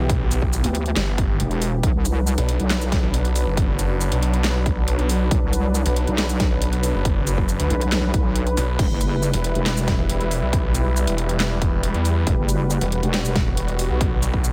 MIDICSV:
0, 0, Header, 1, 5, 480
1, 0, Start_track
1, 0, Key_signature, 1, "minor"
1, 0, Tempo, 434783
1, 105, Time_signature, 4, 2, 24, 8
1, 16037, End_track
2, 0, Start_track
2, 0, Title_t, "Supersaw synth"
2, 0, Program_c, 0, 81
2, 0, Note_on_c, 0, 52, 90
2, 0, Note_on_c, 0, 59, 80
2, 0, Note_on_c, 0, 67, 97
2, 1980, Note_off_c, 0, 67, 0
2, 1981, Note_off_c, 0, 52, 0
2, 1981, Note_off_c, 0, 59, 0
2, 2024, Note_on_c, 0, 54, 89
2, 2024, Note_on_c, 0, 62, 79
2, 2024, Note_on_c, 0, 71, 99
2, 9660, Note_off_c, 0, 54, 0
2, 9660, Note_off_c, 0, 62, 0
2, 9704, Note_on_c, 0, 55, 91
2, 9704, Note_on_c, 0, 64, 80
2, 13506, Note_off_c, 0, 64, 0
2, 13544, Note_on_c, 0, 66, 79
2, 16037, Note_off_c, 0, 55, 0
2, 16037, Note_off_c, 0, 66, 0
2, 16037, Note_off_c, 0, 71, 0
2, 16037, End_track
3, 0, Start_track
3, 0, Title_t, "Detuned saw bass"
3, 0, Program_c, 1, 39
3, 0, Note_on_c, 1, 35, 99
3, 687, Note_off_c, 1, 35, 0
3, 1065, Note_on_c, 1, 31, 99
3, 1526, Note_off_c, 1, 31, 0
3, 2626, Note_on_c, 1, 35, 100
3, 2847, Note_off_c, 1, 35, 0
3, 3346, Note_on_c, 1, 35, 105
3, 3807, Note_off_c, 1, 35, 0
3, 3826, Note_on_c, 1, 30, 98
3, 4527, Note_off_c, 1, 30, 0
3, 4546, Note_on_c, 1, 35, 100
3, 5487, Note_off_c, 1, 35, 0
3, 5506, Note_on_c, 1, 35, 97
3, 5846, Note_off_c, 1, 35, 0
3, 6466, Note_on_c, 1, 35, 102
3, 6687, Note_off_c, 1, 35, 0
3, 7186, Note_on_c, 1, 35, 100
3, 7647, Note_off_c, 1, 35, 0
3, 7666, Note_on_c, 1, 30, 94
3, 8367, Note_off_c, 1, 30, 0
3, 8387, Note_on_c, 1, 38, 105
3, 8486, Note_off_c, 1, 38, 0
3, 9464, Note_on_c, 1, 35, 95
3, 9686, Note_off_c, 1, 35, 0
3, 10306, Note_on_c, 1, 28, 104
3, 10527, Note_off_c, 1, 28, 0
3, 11026, Note_on_c, 1, 28, 100
3, 11487, Note_off_c, 1, 28, 0
3, 11507, Note_on_c, 1, 35, 96
3, 12207, Note_off_c, 1, 35, 0
3, 12226, Note_on_c, 1, 28, 105
3, 13167, Note_off_c, 1, 28, 0
3, 13186, Note_on_c, 1, 40, 98
3, 13526, Note_off_c, 1, 40, 0
3, 14146, Note_on_c, 1, 28, 100
3, 14367, Note_off_c, 1, 28, 0
3, 14867, Note_on_c, 1, 28, 99
3, 15327, Note_off_c, 1, 28, 0
3, 15347, Note_on_c, 1, 35, 94
3, 16037, Note_off_c, 1, 35, 0
3, 16037, End_track
4, 0, Start_track
4, 0, Title_t, "Wobble bass"
4, 0, Program_c, 2, 39
4, 706, Note_on_c, 2, 38, 96
4, 1046, Note_off_c, 2, 38, 0
4, 1544, Note_on_c, 2, 28, 98
4, 2006, Note_off_c, 2, 28, 0
4, 2025, Note_on_c, 2, 35, 104
4, 2127, Note_off_c, 2, 35, 0
4, 2146, Note_on_c, 2, 36, 91
4, 2607, Note_off_c, 2, 36, 0
4, 2866, Note_on_c, 2, 35, 99
4, 3327, Note_off_c, 2, 35, 0
4, 5864, Note_on_c, 2, 35, 102
4, 5967, Note_off_c, 2, 35, 0
4, 5986, Note_on_c, 2, 36, 95
4, 6447, Note_off_c, 2, 36, 0
4, 6706, Note_on_c, 2, 35, 101
4, 7167, Note_off_c, 2, 35, 0
4, 8505, Note_on_c, 2, 35, 91
4, 8966, Note_off_c, 2, 35, 0
4, 8985, Note_on_c, 2, 35, 99
4, 9446, Note_off_c, 2, 35, 0
4, 9705, Note_on_c, 2, 28, 103
4, 9807, Note_off_c, 2, 28, 0
4, 9826, Note_on_c, 2, 30, 90
4, 10287, Note_off_c, 2, 30, 0
4, 10546, Note_on_c, 2, 28, 99
4, 11007, Note_off_c, 2, 28, 0
4, 13545, Note_on_c, 2, 28, 100
4, 13647, Note_off_c, 2, 28, 0
4, 13666, Note_on_c, 2, 30, 92
4, 14127, Note_off_c, 2, 30, 0
4, 14387, Note_on_c, 2, 28, 98
4, 14847, Note_off_c, 2, 28, 0
4, 16037, End_track
5, 0, Start_track
5, 0, Title_t, "Drums"
5, 105, Note_on_c, 9, 36, 127
5, 105, Note_on_c, 9, 42, 78
5, 215, Note_off_c, 9, 36, 0
5, 215, Note_off_c, 9, 42, 0
5, 345, Note_on_c, 9, 42, 54
5, 345, Note_on_c, 9, 82, 84
5, 455, Note_off_c, 9, 42, 0
5, 455, Note_off_c, 9, 82, 0
5, 466, Note_on_c, 9, 36, 61
5, 577, Note_off_c, 9, 36, 0
5, 585, Note_on_c, 9, 82, 84
5, 695, Note_off_c, 9, 82, 0
5, 707, Note_on_c, 9, 42, 75
5, 817, Note_off_c, 9, 42, 0
5, 825, Note_on_c, 9, 42, 51
5, 935, Note_off_c, 9, 42, 0
5, 946, Note_on_c, 9, 42, 37
5, 1057, Note_off_c, 9, 42, 0
5, 1064, Note_on_c, 9, 38, 122
5, 1064, Note_on_c, 9, 39, 88
5, 1064, Note_on_c, 9, 42, 74
5, 1175, Note_off_c, 9, 38, 0
5, 1175, Note_off_c, 9, 39, 0
5, 1175, Note_off_c, 9, 42, 0
5, 1304, Note_on_c, 9, 42, 51
5, 1305, Note_on_c, 9, 36, 112
5, 1415, Note_off_c, 9, 36, 0
5, 1415, Note_off_c, 9, 42, 0
5, 1544, Note_on_c, 9, 42, 76
5, 1654, Note_off_c, 9, 42, 0
5, 1666, Note_on_c, 9, 42, 35
5, 1776, Note_off_c, 9, 42, 0
5, 1784, Note_on_c, 9, 46, 93
5, 1784, Note_on_c, 9, 82, 53
5, 1895, Note_off_c, 9, 46, 0
5, 1895, Note_off_c, 9, 82, 0
5, 2025, Note_on_c, 9, 36, 120
5, 2025, Note_on_c, 9, 42, 77
5, 2135, Note_off_c, 9, 36, 0
5, 2135, Note_off_c, 9, 42, 0
5, 2265, Note_on_c, 9, 42, 51
5, 2265, Note_on_c, 9, 82, 87
5, 2375, Note_off_c, 9, 42, 0
5, 2375, Note_off_c, 9, 82, 0
5, 2505, Note_on_c, 9, 82, 85
5, 2615, Note_off_c, 9, 82, 0
5, 2626, Note_on_c, 9, 42, 74
5, 2737, Note_off_c, 9, 42, 0
5, 2744, Note_on_c, 9, 42, 49
5, 2855, Note_off_c, 9, 42, 0
5, 2866, Note_on_c, 9, 42, 37
5, 2977, Note_off_c, 9, 42, 0
5, 2985, Note_on_c, 9, 38, 111
5, 2985, Note_on_c, 9, 39, 86
5, 2985, Note_on_c, 9, 42, 74
5, 3095, Note_off_c, 9, 38, 0
5, 3095, Note_off_c, 9, 39, 0
5, 3095, Note_off_c, 9, 42, 0
5, 3106, Note_on_c, 9, 82, 81
5, 3217, Note_off_c, 9, 82, 0
5, 3225, Note_on_c, 9, 36, 107
5, 3225, Note_on_c, 9, 38, 64
5, 3225, Note_on_c, 9, 42, 53
5, 3335, Note_off_c, 9, 36, 0
5, 3335, Note_off_c, 9, 38, 0
5, 3335, Note_off_c, 9, 42, 0
5, 3465, Note_on_c, 9, 42, 76
5, 3575, Note_off_c, 9, 42, 0
5, 3587, Note_on_c, 9, 42, 35
5, 3697, Note_off_c, 9, 42, 0
5, 3705, Note_on_c, 9, 46, 98
5, 3705, Note_on_c, 9, 82, 59
5, 3815, Note_off_c, 9, 46, 0
5, 3815, Note_off_c, 9, 82, 0
5, 3944, Note_on_c, 9, 36, 117
5, 3945, Note_on_c, 9, 42, 79
5, 4055, Note_off_c, 9, 36, 0
5, 4055, Note_off_c, 9, 42, 0
5, 4184, Note_on_c, 9, 42, 55
5, 4184, Note_on_c, 9, 82, 87
5, 4295, Note_off_c, 9, 42, 0
5, 4295, Note_off_c, 9, 82, 0
5, 4425, Note_on_c, 9, 82, 88
5, 4535, Note_off_c, 9, 82, 0
5, 4546, Note_on_c, 9, 42, 79
5, 4657, Note_off_c, 9, 42, 0
5, 4665, Note_on_c, 9, 42, 52
5, 4775, Note_off_c, 9, 42, 0
5, 4786, Note_on_c, 9, 42, 40
5, 4897, Note_off_c, 9, 42, 0
5, 4905, Note_on_c, 9, 38, 112
5, 4905, Note_on_c, 9, 39, 80
5, 4905, Note_on_c, 9, 42, 78
5, 5015, Note_off_c, 9, 38, 0
5, 5015, Note_off_c, 9, 39, 0
5, 5015, Note_off_c, 9, 42, 0
5, 5144, Note_on_c, 9, 36, 104
5, 5145, Note_on_c, 9, 42, 55
5, 5255, Note_off_c, 9, 36, 0
5, 5255, Note_off_c, 9, 42, 0
5, 5384, Note_on_c, 9, 42, 78
5, 5495, Note_off_c, 9, 42, 0
5, 5507, Note_on_c, 9, 42, 37
5, 5617, Note_off_c, 9, 42, 0
5, 5625, Note_on_c, 9, 46, 96
5, 5625, Note_on_c, 9, 82, 58
5, 5735, Note_off_c, 9, 46, 0
5, 5735, Note_off_c, 9, 82, 0
5, 5864, Note_on_c, 9, 36, 118
5, 5864, Note_on_c, 9, 42, 83
5, 5975, Note_off_c, 9, 36, 0
5, 5975, Note_off_c, 9, 42, 0
5, 6105, Note_on_c, 9, 42, 59
5, 6105, Note_on_c, 9, 82, 83
5, 6215, Note_off_c, 9, 42, 0
5, 6215, Note_off_c, 9, 82, 0
5, 6345, Note_on_c, 9, 82, 83
5, 6455, Note_off_c, 9, 82, 0
5, 6466, Note_on_c, 9, 42, 80
5, 6576, Note_off_c, 9, 42, 0
5, 6584, Note_on_c, 9, 42, 53
5, 6695, Note_off_c, 9, 42, 0
5, 6706, Note_on_c, 9, 42, 41
5, 6817, Note_off_c, 9, 42, 0
5, 6824, Note_on_c, 9, 38, 113
5, 6824, Note_on_c, 9, 39, 83
5, 6824, Note_on_c, 9, 42, 82
5, 6935, Note_off_c, 9, 38, 0
5, 6935, Note_off_c, 9, 39, 0
5, 6935, Note_off_c, 9, 42, 0
5, 6946, Note_on_c, 9, 82, 82
5, 7057, Note_off_c, 9, 82, 0
5, 7064, Note_on_c, 9, 38, 62
5, 7064, Note_on_c, 9, 42, 58
5, 7065, Note_on_c, 9, 36, 101
5, 7175, Note_off_c, 9, 36, 0
5, 7175, Note_off_c, 9, 38, 0
5, 7175, Note_off_c, 9, 42, 0
5, 7305, Note_on_c, 9, 42, 82
5, 7415, Note_off_c, 9, 42, 0
5, 7426, Note_on_c, 9, 42, 38
5, 7537, Note_off_c, 9, 42, 0
5, 7545, Note_on_c, 9, 46, 99
5, 7545, Note_on_c, 9, 82, 55
5, 7655, Note_off_c, 9, 46, 0
5, 7655, Note_off_c, 9, 82, 0
5, 7785, Note_on_c, 9, 36, 116
5, 7785, Note_on_c, 9, 42, 86
5, 7895, Note_off_c, 9, 36, 0
5, 7895, Note_off_c, 9, 42, 0
5, 8025, Note_on_c, 9, 42, 59
5, 8025, Note_on_c, 9, 82, 81
5, 8135, Note_off_c, 9, 42, 0
5, 8135, Note_off_c, 9, 82, 0
5, 8147, Note_on_c, 9, 36, 60
5, 8257, Note_off_c, 9, 36, 0
5, 8265, Note_on_c, 9, 82, 82
5, 8375, Note_off_c, 9, 82, 0
5, 8386, Note_on_c, 9, 42, 82
5, 8497, Note_off_c, 9, 42, 0
5, 8505, Note_on_c, 9, 42, 58
5, 8615, Note_off_c, 9, 42, 0
5, 8626, Note_on_c, 9, 42, 42
5, 8737, Note_off_c, 9, 42, 0
5, 8744, Note_on_c, 9, 38, 116
5, 8744, Note_on_c, 9, 39, 85
5, 8744, Note_on_c, 9, 42, 85
5, 8855, Note_off_c, 9, 38, 0
5, 8855, Note_off_c, 9, 39, 0
5, 8855, Note_off_c, 9, 42, 0
5, 8985, Note_on_c, 9, 36, 100
5, 8985, Note_on_c, 9, 42, 58
5, 9095, Note_off_c, 9, 36, 0
5, 9095, Note_off_c, 9, 42, 0
5, 9224, Note_on_c, 9, 42, 83
5, 9335, Note_off_c, 9, 42, 0
5, 9346, Note_on_c, 9, 42, 40
5, 9457, Note_off_c, 9, 42, 0
5, 9465, Note_on_c, 9, 46, 98
5, 9465, Note_on_c, 9, 82, 55
5, 9575, Note_off_c, 9, 46, 0
5, 9575, Note_off_c, 9, 82, 0
5, 9705, Note_on_c, 9, 36, 126
5, 9705, Note_on_c, 9, 42, 85
5, 9705, Note_on_c, 9, 49, 79
5, 9815, Note_off_c, 9, 36, 0
5, 9815, Note_off_c, 9, 42, 0
5, 9815, Note_off_c, 9, 49, 0
5, 9945, Note_on_c, 9, 42, 60
5, 9945, Note_on_c, 9, 82, 78
5, 10055, Note_off_c, 9, 42, 0
5, 10055, Note_off_c, 9, 82, 0
5, 10185, Note_on_c, 9, 82, 76
5, 10295, Note_off_c, 9, 82, 0
5, 10306, Note_on_c, 9, 42, 82
5, 10417, Note_off_c, 9, 42, 0
5, 10425, Note_on_c, 9, 42, 55
5, 10535, Note_off_c, 9, 42, 0
5, 10547, Note_on_c, 9, 42, 42
5, 10657, Note_off_c, 9, 42, 0
5, 10665, Note_on_c, 9, 38, 117
5, 10665, Note_on_c, 9, 39, 93
5, 10665, Note_on_c, 9, 42, 80
5, 10775, Note_off_c, 9, 38, 0
5, 10775, Note_off_c, 9, 39, 0
5, 10775, Note_off_c, 9, 42, 0
5, 10786, Note_on_c, 9, 82, 73
5, 10897, Note_off_c, 9, 82, 0
5, 10905, Note_on_c, 9, 36, 109
5, 10905, Note_on_c, 9, 38, 65
5, 10905, Note_on_c, 9, 42, 56
5, 11015, Note_off_c, 9, 36, 0
5, 11015, Note_off_c, 9, 38, 0
5, 11015, Note_off_c, 9, 42, 0
5, 11145, Note_on_c, 9, 42, 87
5, 11255, Note_off_c, 9, 42, 0
5, 11267, Note_on_c, 9, 42, 40
5, 11377, Note_off_c, 9, 42, 0
5, 11385, Note_on_c, 9, 46, 98
5, 11385, Note_on_c, 9, 82, 51
5, 11495, Note_off_c, 9, 46, 0
5, 11495, Note_off_c, 9, 82, 0
5, 11625, Note_on_c, 9, 36, 126
5, 11625, Note_on_c, 9, 42, 83
5, 11735, Note_off_c, 9, 36, 0
5, 11735, Note_off_c, 9, 42, 0
5, 11865, Note_on_c, 9, 42, 57
5, 11865, Note_on_c, 9, 82, 78
5, 11975, Note_off_c, 9, 42, 0
5, 11975, Note_off_c, 9, 82, 0
5, 12104, Note_on_c, 9, 82, 77
5, 12215, Note_off_c, 9, 82, 0
5, 12226, Note_on_c, 9, 42, 83
5, 12336, Note_off_c, 9, 42, 0
5, 12344, Note_on_c, 9, 42, 51
5, 12455, Note_off_c, 9, 42, 0
5, 12466, Note_on_c, 9, 42, 40
5, 12577, Note_off_c, 9, 42, 0
5, 12585, Note_on_c, 9, 38, 119
5, 12585, Note_on_c, 9, 39, 94
5, 12585, Note_on_c, 9, 42, 81
5, 12695, Note_off_c, 9, 38, 0
5, 12695, Note_off_c, 9, 39, 0
5, 12695, Note_off_c, 9, 42, 0
5, 12824, Note_on_c, 9, 42, 57
5, 12825, Note_on_c, 9, 36, 110
5, 12935, Note_off_c, 9, 36, 0
5, 12935, Note_off_c, 9, 42, 0
5, 13065, Note_on_c, 9, 42, 83
5, 13175, Note_off_c, 9, 42, 0
5, 13186, Note_on_c, 9, 42, 38
5, 13297, Note_off_c, 9, 42, 0
5, 13305, Note_on_c, 9, 46, 89
5, 13305, Note_on_c, 9, 82, 52
5, 13415, Note_off_c, 9, 46, 0
5, 13415, Note_off_c, 9, 82, 0
5, 13544, Note_on_c, 9, 42, 78
5, 13545, Note_on_c, 9, 36, 124
5, 13655, Note_off_c, 9, 36, 0
5, 13655, Note_off_c, 9, 42, 0
5, 13785, Note_on_c, 9, 42, 53
5, 13785, Note_on_c, 9, 82, 79
5, 13895, Note_off_c, 9, 42, 0
5, 13895, Note_off_c, 9, 82, 0
5, 14024, Note_on_c, 9, 82, 81
5, 14135, Note_off_c, 9, 82, 0
5, 14146, Note_on_c, 9, 42, 74
5, 14257, Note_off_c, 9, 42, 0
5, 14265, Note_on_c, 9, 42, 51
5, 14375, Note_off_c, 9, 42, 0
5, 14386, Note_on_c, 9, 42, 39
5, 14497, Note_off_c, 9, 42, 0
5, 14504, Note_on_c, 9, 38, 123
5, 14504, Note_on_c, 9, 39, 91
5, 14504, Note_on_c, 9, 42, 77
5, 14615, Note_off_c, 9, 38, 0
5, 14615, Note_off_c, 9, 39, 0
5, 14615, Note_off_c, 9, 42, 0
5, 14626, Note_on_c, 9, 82, 77
5, 14737, Note_off_c, 9, 82, 0
5, 14744, Note_on_c, 9, 38, 68
5, 14744, Note_on_c, 9, 42, 53
5, 14745, Note_on_c, 9, 36, 115
5, 14855, Note_off_c, 9, 36, 0
5, 14855, Note_off_c, 9, 38, 0
5, 14855, Note_off_c, 9, 42, 0
5, 14984, Note_on_c, 9, 42, 77
5, 15095, Note_off_c, 9, 42, 0
5, 15106, Note_on_c, 9, 42, 37
5, 15217, Note_off_c, 9, 42, 0
5, 15224, Note_on_c, 9, 46, 90
5, 15224, Note_on_c, 9, 82, 52
5, 15335, Note_off_c, 9, 46, 0
5, 15335, Note_off_c, 9, 82, 0
5, 15464, Note_on_c, 9, 42, 80
5, 15465, Note_on_c, 9, 36, 127
5, 15575, Note_off_c, 9, 36, 0
5, 15575, Note_off_c, 9, 42, 0
5, 15704, Note_on_c, 9, 42, 51
5, 15704, Note_on_c, 9, 82, 86
5, 15815, Note_off_c, 9, 42, 0
5, 15815, Note_off_c, 9, 82, 0
5, 15827, Note_on_c, 9, 36, 64
5, 15937, Note_off_c, 9, 36, 0
5, 15944, Note_on_c, 9, 82, 87
5, 16037, Note_off_c, 9, 82, 0
5, 16037, End_track
0, 0, End_of_file